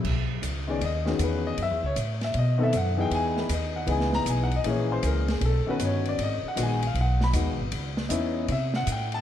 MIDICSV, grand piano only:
0, 0, Header, 1, 2, 480
1, 0, Start_track
1, 0, Key_signature, 5, "major"
1, 0, Tempo, 383632
1, 55, Time_signature, 4, 2, 24, 8
1, 11524, End_track
2, 0, Start_track
2, 0, Title_t, "Grand piano"
2, 0, Program_c, 0, 0
2, 844, Note_on_c, 0, 51, 68
2, 849, Note_on_c, 0, 59, 58
2, 859, Note_on_c, 0, 61, 58
2, 869, Note_on_c, 0, 68, 65
2, 881, Note_on_c, 0, 74, 71
2, 995, Note_off_c, 0, 51, 0
2, 998, Note_off_c, 0, 59, 0
2, 1003, Note_off_c, 0, 61, 0
2, 1008, Note_off_c, 0, 68, 0
2, 1026, Note_off_c, 0, 74, 0
2, 1053, Note_on_c, 0, 75, 81
2, 1317, Note_on_c, 0, 51, 66
2, 1324, Note_on_c, 0, 59, 61
2, 1332, Note_on_c, 0, 61, 61
2, 1339, Note_on_c, 0, 68, 71
2, 1341, Note_off_c, 0, 75, 0
2, 1359, Note_on_c, 0, 66, 65
2, 1505, Note_off_c, 0, 66, 0
2, 1543, Note_on_c, 0, 71, 62
2, 1826, Note_off_c, 0, 71, 0
2, 1839, Note_on_c, 0, 75, 89
2, 1935, Note_off_c, 0, 51, 0
2, 1939, Note_off_c, 0, 59, 0
2, 1943, Note_off_c, 0, 61, 0
2, 1946, Note_off_c, 0, 68, 0
2, 1985, Note_off_c, 0, 75, 0
2, 2033, Note_on_c, 0, 76, 95
2, 2311, Note_off_c, 0, 76, 0
2, 2326, Note_on_c, 0, 73, 80
2, 2414, Note_off_c, 0, 73, 0
2, 2807, Note_on_c, 0, 76, 74
2, 2949, Note_off_c, 0, 76, 0
2, 2986, Note_on_c, 0, 75, 72
2, 3226, Note_on_c, 0, 51, 70
2, 3231, Note_on_c, 0, 59, 73
2, 3243, Note_on_c, 0, 60, 69
2, 3257, Note_on_c, 0, 69, 75
2, 3268, Note_off_c, 0, 75, 0
2, 3297, Note_on_c, 0, 76, 90
2, 3387, Note_off_c, 0, 51, 0
2, 3389, Note_off_c, 0, 59, 0
2, 3395, Note_off_c, 0, 60, 0
2, 3402, Note_off_c, 0, 69, 0
2, 3434, Note_off_c, 0, 76, 0
2, 3467, Note_on_c, 0, 78, 73
2, 3717, Note_on_c, 0, 52, 73
2, 3730, Note_on_c, 0, 59, 64
2, 3735, Note_on_c, 0, 63, 62
2, 3747, Note_on_c, 0, 68, 84
2, 3748, Note_off_c, 0, 78, 0
2, 3765, Note_on_c, 0, 79, 82
2, 3908, Note_off_c, 0, 79, 0
2, 3936, Note_on_c, 0, 80, 93
2, 4222, Note_off_c, 0, 80, 0
2, 4239, Note_on_c, 0, 71, 61
2, 4336, Note_off_c, 0, 52, 0
2, 4342, Note_off_c, 0, 59, 0
2, 4345, Note_off_c, 0, 63, 0
2, 4351, Note_off_c, 0, 68, 0
2, 4385, Note_off_c, 0, 71, 0
2, 4419, Note_on_c, 0, 75, 61
2, 4704, Note_off_c, 0, 75, 0
2, 4707, Note_on_c, 0, 78, 69
2, 4837, Note_on_c, 0, 52, 59
2, 4841, Note_on_c, 0, 59, 58
2, 4852, Note_on_c, 0, 63, 46
2, 4859, Note_off_c, 0, 78, 0
2, 4864, Note_on_c, 0, 68, 68
2, 4893, Note_on_c, 0, 80, 79
2, 5181, Note_off_c, 0, 80, 0
2, 5189, Note_on_c, 0, 82, 106
2, 5340, Note_off_c, 0, 82, 0
2, 5376, Note_on_c, 0, 80, 75
2, 5511, Note_off_c, 0, 80, 0
2, 5549, Note_on_c, 0, 78, 83
2, 5579, Note_off_c, 0, 52, 0
2, 5580, Note_off_c, 0, 59, 0
2, 5586, Note_off_c, 0, 63, 0
2, 5592, Note_off_c, 0, 68, 0
2, 5678, Note_off_c, 0, 78, 0
2, 5708, Note_on_c, 0, 75, 78
2, 5813, Note_on_c, 0, 52, 72
2, 5820, Note_on_c, 0, 58, 53
2, 5835, Note_on_c, 0, 68, 77
2, 5836, Note_on_c, 0, 61, 54
2, 5838, Note_off_c, 0, 75, 0
2, 5868, Note_on_c, 0, 73, 73
2, 6149, Note_off_c, 0, 73, 0
2, 6157, Note_on_c, 0, 72, 75
2, 6304, Note_off_c, 0, 72, 0
2, 6335, Note_on_c, 0, 70, 64
2, 6547, Note_off_c, 0, 52, 0
2, 6550, Note_off_c, 0, 58, 0
2, 6558, Note_off_c, 0, 61, 0
2, 6558, Note_off_c, 0, 68, 0
2, 6622, Note_off_c, 0, 70, 0
2, 6639, Note_on_c, 0, 68, 63
2, 6785, Note_off_c, 0, 68, 0
2, 6820, Note_on_c, 0, 69, 78
2, 7086, Note_on_c, 0, 51, 64
2, 7097, Note_on_c, 0, 59, 58
2, 7104, Note_off_c, 0, 69, 0
2, 7106, Note_on_c, 0, 61, 65
2, 7114, Note_on_c, 0, 66, 70
2, 7137, Note_on_c, 0, 71, 81
2, 7274, Note_off_c, 0, 71, 0
2, 7320, Note_on_c, 0, 73, 78
2, 7595, Note_off_c, 0, 73, 0
2, 7615, Note_on_c, 0, 74, 84
2, 7700, Note_off_c, 0, 51, 0
2, 7706, Note_off_c, 0, 59, 0
2, 7710, Note_off_c, 0, 61, 0
2, 7714, Note_off_c, 0, 66, 0
2, 7753, Note_off_c, 0, 74, 0
2, 7796, Note_on_c, 0, 75, 80
2, 8073, Note_off_c, 0, 75, 0
2, 8109, Note_on_c, 0, 78, 77
2, 8197, Note_on_c, 0, 51, 58
2, 8217, Note_on_c, 0, 56, 59
2, 8220, Note_on_c, 0, 59, 57
2, 8228, Note_on_c, 0, 66, 75
2, 8241, Note_off_c, 0, 78, 0
2, 8294, Note_on_c, 0, 80, 90
2, 8491, Note_off_c, 0, 51, 0
2, 8500, Note_off_c, 0, 56, 0
2, 8502, Note_off_c, 0, 59, 0
2, 8506, Note_off_c, 0, 66, 0
2, 8562, Note_off_c, 0, 80, 0
2, 8592, Note_on_c, 0, 77, 72
2, 8722, Note_off_c, 0, 77, 0
2, 8770, Note_on_c, 0, 78, 82
2, 9040, Note_off_c, 0, 78, 0
2, 9053, Note_on_c, 0, 83, 109
2, 9139, Note_off_c, 0, 83, 0
2, 9171, Note_on_c, 0, 51, 51
2, 9182, Note_on_c, 0, 56, 46
2, 9192, Note_on_c, 0, 59, 46
2, 9197, Note_on_c, 0, 66, 66
2, 9457, Note_off_c, 0, 51, 0
2, 9463, Note_off_c, 0, 56, 0
2, 9468, Note_off_c, 0, 59, 0
2, 9470, Note_off_c, 0, 66, 0
2, 10120, Note_on_c, 0, 63, 65
2, 10129, Note_on_c, 0, 59, 62
2, 10143, Note_on_c, 0, 61, 64
2, 10148, Note_on_c, 0, 64, 74
2, 10608, Note_off_c, 0, 63, 0
2, 10613, Note_off_c, 0, 59, 0
2, 10620, Note_off_c, 0, 61, 0
2, 10622, Note_off_c, 0, 64, 0
2, 10661, Note_on_c, 0, 76, 77
2, 10946, Note_off_c, 0, 76, 0
2, 10961, Note_on_c, 0, 78, 94
2, 11106, Note_off_c, 0, 78, 0
2, 11162, Note_on_c, 0, 79, 77
2, 11436, Note_off_c, 0, 79, 0
2, 11440, Note_on_c, 0, 81, 107
2, 11524, Note_off_c, 0, 81, 0
2, 11524, End_track
0, 0, End_of_file